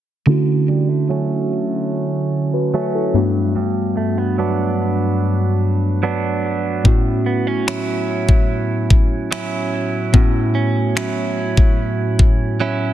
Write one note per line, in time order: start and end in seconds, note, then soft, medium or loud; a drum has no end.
0.26 3.10 D3 medium
0.26 3.77 D3 medium
0.26 3.11 A3 medium
0.26 3.11 C#4 medium
0.26 2.30 E4 medium
0.26 2.30 F#4 medium
0.68 0.89 G3 medium
0.89 1.09 A3 soft
1.09 2.73 F#3 medium
1.09 2.73 A3 medium
1.09 2.74 C#4 medium
2.53 2.73 F#4 soft
2.53 2.73 B4 medium
2.74 3.59 F#3 medium
2.74 3.24 A3 medium
2.74 3.24 C#4 medium
2.74 2.94 F#4 medium
2.74 2.93 C#5 medium
2.95 3.34 E4 medium
2.95 3.34 A4 medium
3.13 6.39 G2 medium
3.13 3.55 G2 medium
3.13 6.40 A3 medium
3.13 6.40 B3 medium
3.13 6.40 D4 medium
3.13 6.41 F#4 medium
3.56 6.85 G2 medium
3.97 4.18 A3 medium
4.18 4.38 B3 soft
4.38 6.02 F#3 medium
4.38 6.02 B3 medium
4.38 6.03 D4 medium
6.03 7.67 F#3 medium
6.03 6.93 B3 medium
6.03 6.94 D4 medium
6.84 10.09 A2 medium
6.84 10.12 A2 medium
6.84 10.10 B3 medium
6.84 10.10 C#4 medium
6.84 10.10 E4 medium
6.84 10.11 F#4 medium
6.84 kick loud
7.26 7.47 B3 medium
7.47 7.67 C#4 soft
7.67 9.31 F#3 medium
7.67 9.32 C#4 medium
7.67 9.32 E4 medium
7.67 finger snap loud
8.29 kick medium
8.90 kick medium
9.31 10.96 F#3 medium
9.31 10.54 C#4 medium
9.31 10.96 E4 medium
9.31 finger snap loud
10.12 12.93 A2 medium
10.12 12.93 B3 medium
10.12 12.93 C#4 medium
10.12 12.93 E4 medium
10.12 12.93 F#4 medium
10.12 kick loud
10.55 10.96 C#4 medium
10.96 12.60 F#3 medium
10.96 12.61 C#4 medium
10.96 12.60 E4 medium
10.96 finger snap loud
11.57 kick medium
12.19 kick medium
12.60 12.93 F#3 medium
12.60 12.93 C#4 medium
12.60 12.93 E4 medium